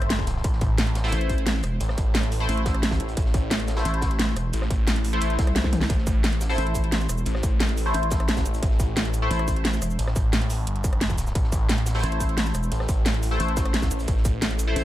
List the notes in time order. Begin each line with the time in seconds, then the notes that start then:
Already playing: G1 A3 E4 C5
0.02 cross-stick, closed hi-hat
0.10 snare, closed hi-hat
0.19 kick
0.27 snare, closed hi-hat
0.37 snare
0.44 A1, kick, closed hi-hat
0.53 snare
0.61 A1, kick, closed hi-hat
0.78 snare, closed hi-hat
0.87 closed hi-hat
0.95 snare, closed hi-hat
1.04 A3 E4 C5, snare, closed hi-hat
1.08 snare, closed hi-hat
1.12 A1, closed hi-hat
1.21 closed hi-hat
1.29 kick, closed hi-hat
1.38 closed hi-hat
1.46 snare, closed hi-hat
1.63 E1, cross-stick, closed hi-hat
1.80 A1, closed hi-hat
1.89 cross-stick, snare
1.98 A1, kick, closed hi-hat
2.14 snare, closed hi-hat
2.23 closed hi-hat
2.32 closed hi-hat, open hi-hat
2.40 A3 E4 C5
2.49 A1, closed hi-hat
2.57 closed hi-hat
2.65 kick, snare, closed hi-hat
2.74 cross-stick, closed hi-hat
2.83 snare, closed hi-hat
2.91 kick, snare, closed hi-hat
3.00 A1, closed hi-hat
3.09 closed hi-hat
3.17 A1, kick, closed hi-hat
3.25 snare
3.34 A1, kick, closed hi-hat
3.51 snare, closed hi-hat
3.60 closed hi-hat
3.67 snare, closed hi-hat
3.77 A3 E4 C5, snare, closed hi-hat
3.85 A1, closed hi-hat
3.94 closed hi-hat
4.02 kick, snare, closed hi-hat
4.11 closed hi-hat
4.19 snare, closed hi-hat
4.36 E1, cross-stick, closed hi-hat
4.53 A1, closed hi-hat
4.62 cross-stick, snare
4.71 A1, kick, closed hi-hat
4.87 snare, closed hi-hat
4.96 closed hi-hat
5.04 closed hi-hat, open hi-hat
5.13 A3 E4 C5, closed hi-hat
5.21 A1, closed hi-hat
5.30 closed hi-hat
5.39 C2, kick, snare, closed hi-hat
5.47 cross-stick, closed hi-hat
5.55 snare, closed hi-hat
5.64 kick, snare
5.72 snare, closed hi-hat, mid tom
5.81 snare
5.89 A1, kick, closed hi-hat
5.98 snare
6.07 A1, kick, closed hi-hat, cabasa
6.24 snare, closed hi-hat
6.33 closed hi-hat
6.41 snare, closed hi-hat, cabasa
6.49 A3 E4 C5, snare, closed hi-hat
6.53 snare, closed hi-hat
6.58 A1, closed hi-hat
6.67 closed hi-hat
6.74 kick, closed hi-hat, cabasa
6.84 closed hi-hat
6.92 snare, closed hi-hat
7.01 cabasa
7.09 E1, cross-stick, closed hi-hat, cabasa
7.18 cabasa
7.26 A1, closed hi-hat
7.35 cross-stick, snare
7.43 A1, kick, closed hi-hat, cabasa
7.60 snare, closed hi-hat
7.69 closed hi-hat
7.77 closed hi-hat, open hi-hat, cabasa
7.86 A3 E4 C5
7.94 A1, closed hi-hat
8.03 closed hi-hat
8.10 kick, snare, closed hi-hat, cabasa
8.20 cross-stick, closed hi-hat
8.28 snare, closed hi-hat
8.37 kick, snare, closed hi-hat, cabasa
8.45 A1, closed hi-hat, cabasa
8.54 closed hi-hat, cabasa
8.63 A1, kick, closed hi-hat
8.71 snare
8.80 A1, kick, closed hi-hat, cabasa
8.97 snare, closed hi-hat
9.05 closed hi-hat
9.13 closed hi-hat, cabasa
9.22 A3 E4 C5
9.31 A1, closed hi-hat
9.39 cross-stick, closed hi-hat
9.48 kick, closed hi-hat, cabasa
9.56 closed hi-hat
9.65 snare, closed hi-hat
9.73 cabasa
9.82 E1, cross-stick, closed hi-hat, cabasa
9.90 cabasa
9.99 A1, closed hi-hat
10.07 cross-stick, snare
10.16 A1, kick, closed hi-hat, cabasa
10.33 snare, closed hi-hat
10.42 closed hi-hat
10.50 closed hi-hat, open hi-hat, cabasa
10.67 G1, closed hi-hat
10.76 closed hi-hat
10.84 kick, closed hi-hat, cabasa
10.93 cross-stick, closed hi-hat
11.01 snare, closed hi-hat
11.10 kick, cabasa
11.18 snare, closed hi-hat, cabasa
11.27 snare, cabasa
11.35 A1, kick, closed hi-hat
11.43 snare
11.52 A1, kick, closed hi-hat, cabasa
11.69 snare, closed hi-hat
11.78 closed hi-hat
11.86 snare, closed hi-hat, cabasa
11.94 A3 E4 C5, snare, closed hi-hat
11.99 snare, closed hi-hat
12.03 A1, closed hi-hat
12.12 closed hi-hat
12.20 kick, closed hi-hat, cabasa
12.29 closed hi-hat
12.37 snare, closed hi-hat
12.46 cabasa
12.54 E1, cross-stick, closed hi-hat, cabasa
12.63 cabasa
12.72 A1, closed hi-hat
12.80 cross-stick, snare
12.89 A1, kick, closed hi-hat, cabasa
13.05 snare, closed hi-hat
13.14 closed hi-hat
13.23 closed hi-hat, open hi-hat, cabasa
13.31 A3 E4 C5
13.39 A1, closed hi-hat
13.48 closed hi-hat
13.56 kick, snare, closed hi-hat, cabasa
13.65 cross-stick, closed hi-hat
13.74 snare, closed hi-hat
13.82 kick, snare, closed hi-hat, cabasa
13.91 A1, closed hi-hat, cabasa
13.99 closed hi-hat, cabasa
14.07 A1, kick, closed hi-hat
14.17 snare
14.25 A1, kick, closed hi-hat, cabasa
14.42 snare, closed hi-hat
14.51 closed hi-hat
14.59 closed hi-hat, cabasa
14.67 A3 E4 C5
14.76 A1, closed hi-hat